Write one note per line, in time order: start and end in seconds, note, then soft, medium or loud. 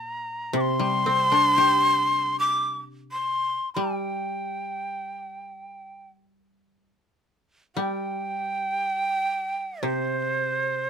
0.00 0.52 A#2 medium
0.00 0.58 A#5 medium
0.53 3.55 C3 medium
0.53 0.62 D6 loud
0.61 2.39 C6 loud
0.80 2.79 G3 soft
1.06 3.05 C4 soft
1.32 3.31 D4 medium
1.58 3.57 G4 soft
2.40 2.79 D6 medium
3.12 3.69 C6 medium
3.74 6.91 G3 soft
3.74 6.09 G5 medium
7.75 10.77 G3 soft
7.75 9.85 G5 loud
9.83 10.90 C3 medium
9.83 10.90 C5 medium